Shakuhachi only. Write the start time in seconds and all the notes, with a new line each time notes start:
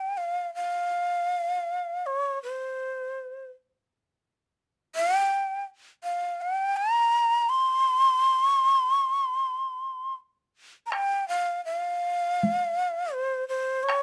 Already playing: G5
0.17 F5
0.55 F5
2.06 C#5
2.43 C5
4.96 F5
5.16 G5
6.04 F5
6.42 G5
6.77 A#5
7.49 C6
8.46 C#6
8.65 C6
8.99 C#6
9.18 C6
10.86 A#5
10.91 G5
11.28 F5
11.65 E5
11.76 F5
13.13 C5
13.48 C5
13.83 C#5